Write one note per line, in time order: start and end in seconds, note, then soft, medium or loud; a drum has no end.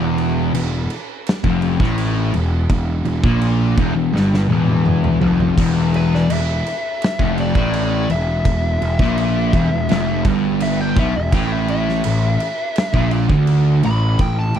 0.00 0.50 E1 loud
0.00 0.53 E2 loud
0.18 crash medium
0.53 0.87 E1 loud
0.53 0.83 E2 medium
0.53 crash medium
0.90 crash medium
1.26 snare loud
1.26 crash medium
1.44 1.78 F1 loud
1.44 1.79 F2 loud
1.44 kick loud
1.62 crash medium
1.80 2.30 A1 loud
1.80 2.33 A2 loud
1.80 kick loud
1.80 snare soft
1.98 crash medium
2.33 2.67 E1 medium
2.33 2.63 E2 medium
2.33 crash medium
2.70 3.03 E1 medium
2.70 2.99 E2 medium
2.70 kick medium
2.70 crash medium
3.05 3.22 E1 medium
3.05 3.23 E2 medium
3.05 crash medium
3.23 3.74 A#1 medium
3.23 3.76 A#2 loud
3.23 kick loud
3.42 crash medium
3.77 3.95 E1 loud
3.77 3.94 E2 loud
3.77 kick loud
3.77 crash medium
3.95 4.12 E1 medium
3.95 4.13 E2 medium
4.12 4.46 G1 loud
4.12 4.48 G2 medium
4.12 snare medium
4.34 snare medium
4.49 5.17 E1 loud
4.49 5.20 E2 loud
4.49 high tom medium
4.67 high tom medium
4.86 mid tom medium
5.04 mid tom medium
5.21 5.55 F1 loud
5.21 5.56 F2 loud
5.21 floor tom loud
5.40 floor tom loud
5.57 6.26 E1 loud
5.57 6.28 E2 loud
5.57 kick loud
5.57 crash loud
5.94 6.12 B4 loud
5.94 crash medium
6.15 6.32 D5 medium
6.15 snare soft
6.29 6.63 E1 medium
6.29 6.58 E2 medium
6.29 7.36 E5 medium
6.29 crash loud
6.66 crash medium
7.02 snare loud
7.02 crash medium
7.19 7.53 F1 loud
7.19 7.54 F2 loud
7.19 kick loud
7.38 7.74 D5 medium
7.38 crash medium
7.55 8.05 A1 medium
7.55 8.08 A2 loud
7.55 kick loud
7.74 8.09 D5 medium
7.74 crash medium
8.09 8.43 E1 medium
8.09 8.38 E2 medium
8.09 10.22 E5 loud
8.09 crash medium
8.45 8.79 E1 medium
8.45 8.74 E2 medium
8.45 kick medium
8.45 crash medium
8.82 8.98 E1 medium
8.82 8.99 E2 medium
8.82 crash medium
8.99 9.49 A#1 medium
8.99 9.53 A#2 loud
8.99 kick loud
8.99 snare soft
9.18 crash medium
9.53 9.70 E1 loud
9.53 9.70 E2 loud
9.53 kick loud
9.53 crash medium
9.72 9.88 E1 medium
9.72 9.89 E2 medium
9.89 10.23 F1 loud
9.89 10.25 F2 loud
9.89 snare loud
9.89 crash medium
10.25 10.93 G1 loud
10.25 10.96 G2 loud
10.25 kick loud
10.25 crash medium
10.60 10.80 E5 loud
10.60 crash loud
10.80 10.97 G5 medium
10.96 11.13 B1 loud
10.96 11.14 B2 loud
10.96 11.15 E5 medium
10.96 kick loud
10.96 crash medium
11.15 11.32 E1 medium
11.15 11.33 E2 medium
11.15 11.33 E5 loud
11.32 12.00 A1 loud
11.32 12.04 A2 loud
11.32 11.52 G5 loud
11.32 kick loud
11.32 crash loud
11.52 11.69 E5 loud
11.68 13.09 E5 loud
11.68 crash medium
11.89 snare soft
12.04 12.38 A1 loud
12.04 12.34 A2 medium
12.04 crash medium
12.40 crash medium
12.76 snare loud
12.76 crash medium
12.93 13.28 A#1 loud
12.93 13.29 A#2 loud
12.93 kick loud
13.11 crash medium
13.29 13.80 D2 loud
13.29 13.82 D3 loud
13.29 kick loud
13.47 crash medium
13.83 14.18 A1 medium
13.83 14.12 A2 medium
13.83 14.20 B5 loud
13.83 crash medium
14.19 14.53 A1 medium
14.19 14.48 A2 medium
14.19 14.38 G5 loud
14.19 kick loud
14.19 crash medium
14.39 14.56 A5 medium
14.54 14.59 A1 medium
14.54 14.59 A2 medium
14.54 14.59 G5 loud
14.54 crash medium